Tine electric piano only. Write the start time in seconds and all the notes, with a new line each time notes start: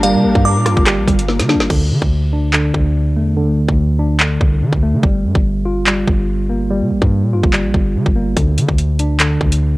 Already playing: A#3 F4
0.04 G3
0.67 F4
0.87 G3
1.49 A#3
1.70 D3
2.33 D4
2.53 D3
3.17 A3
3.36 D3
3.99 D4
4.20 D3
4.83 A3
5.03 G3
5.65 F4
5.87 G3
6.49 A#3
6.70 G3
7.33 F4
7.53 G3
8.16 A#3
8.37 D3
9.00 D4
9.20 D3